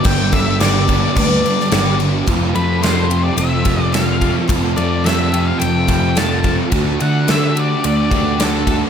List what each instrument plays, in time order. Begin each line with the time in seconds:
0.04 picked electric bass G1, distorted electric guitar G2 D3 G3, overdriven electric guitar G2 D3 G3 B3 D4, twelve-string acoustic guitar G4, lead electric guitar G5, kick, crash
0.32 twelve-string acoustic guitar A4, lead electric guitar E5, kick, crash
0.60 distorted electric guitar G2 D3 G3, twelve-string acoustic guitar G4, lead electric guitar D5, snare, crash
0.88 overdriven electric guitar G2 D3 G3 B3 D4, twelve-string acoustic guitar A4, kick, crash
1.15 picked electric bass D2, distorted electric guitar G2 D3 G3, twelve-string acoustic guitar B4, lead electric guitar D5, kick, crash
1.44 distorted electric guitar D3 G3, twelve-string acoustic guitar A4, crash
1.60 snare
1.72 picked electric bass G1, overdriven electric guitar G2 D3 G3 B3 D4, distorted electric guitar G2 D3 G3, twelve-string acoustic guitar G4, snare, crash
1.99 twelve-string acoustic guitar F#4, crash
2.27 picked electric bass F1, distorted electric guitar F2 C3 F3, overdriven electric guitar F3 A3 C4 F4, twelve-string acoustic guitar F4, kick, ride
2.54 picked electric bass F2, distorted electric guitar C3 F3, overdriven electric guitar A3 C4 F4, twelve-string acoustic guitar A4, lead electric guitar B4, ride
2.81 distorted electric guitar F2 C3 F3, overdriven electric guitar F3 A3 C4 F4, twelve-string acoustic guitar A4, lead electric guitar C5, snare, ride
3.10 distorted electric guitar C3 F3, overdriven electric guitar A3 C4 F4, twelve-string acoustic guitar G4, ride
3.23 lead electric guitar D5
3.37 picked electric bass F1, distorted electric guitar F2 C3 F3, twelve-string acoustic guitar A4, lead electric guitar E5, ride
3.65 distorted electric guitar C3 F3, overdriven electric guitar A3 C4 F4, twelve-string acoustic guitar G4, kick, ride
3.83 lead electric guitar D5
3.92 distorted electric guitar F2 C3 F3, overdriven electric guitar F3 A3 C4 F4, twelve-string acoustic guitar A4, lead electric guitar F5, snare, ride
4.21 distorted electric guitar C3 F3, twelve-string acoustic guitar F4, kick, ride
4.48 picked electric bass F1, distorted electric guitar F2 C3 F3, overdriven electric guitar F3 A3 C4 F4, twelve-string acoustic guitar F4, kick, ride
4.76 picked electric bass F2, distorted electric guitar C3 F3, overdriven electric guitar A3 C4 F4, twelve-string acoustic guitar A4, lead electric guitar D5, ride
5.04 distorted electric guitar F2 C3 F3, overdriven electric guitar F3 A3 C4 F4, twelve-string acoustic guitar A4, lead electric guitar E5, snare, ride
5.32 distorted electric guitar C3 F3, overdriven electric guitar A3 C4 F4, twelve-string acoustic guitar G4, ride
5.46 lead electric guitar F5
5.58 picked electric bass F1, distorted electric guitar F2 C3, twelve-string acoustic guitar A4, lead electric guitar G5, ride
5.63 distorted electric guitar F3
5.87 distorted electric guitar F3, overdriven electric guitar A3 C4 F4, twelve-string acoustic guitar G4, kick, ride
5.92 distorted electric guitar C3
6.15 distorted electric guitar F2 C3 F3, overdriven electric guitar F3 A3 C4 F4, twelve-string acoustic guitar A4, lead electric guitar A5, snare, ride
6.43 distorted electric guitar C3 F3, twelve-string acoustic guitar F4, kick, ride
6.71 picked electric bass D2, overdriven electric guitar D3 A3 D4 F#4, distorted electric guitar D3 A3 D4, twelve-string acoustic guitar F#4, kick, ride
6.99 picked electric bass D3, overdriven electric guitar A3 D4 F#4, distorted electric guitar A3 D4, twelve-string acoustic guitar A4, lead electric guitar F#5, ride
7.27 overdriven electric guitar D3 A3 D4 F#4, distorted electric guitar D3 A3 D4, twelve-string acoustic guitar A4, lead electric guitar E5, snare, ride
7.55 overdriven electric guitar A3 D4 F#4, distorted electric guitar A3 D4, twelve-string acoustic guitar G4, ride
7.60 lead electric guitar D5
7.83 picked electric bass D2, distorted electric guitar D3 A3 D4, twelve-string acoustic guitar A4, lead electric guitar D5, ride
8.10 overdriven electric guitar A3 D4 F#4, distorted electric guitar A3 D4, twelve-string acoustic guitar G4, kick, ride
8.38 overdriven electric guitar D3 A3 D4 F#4, distorted electric guitar D3 A3 D4, twelve-string acoustic guitar A4, snare, ride
8.44 lead electric guitar A4
8.66 distorted electric guitar A3 D4, twelve-string acoustic guitar F#4, kick, ride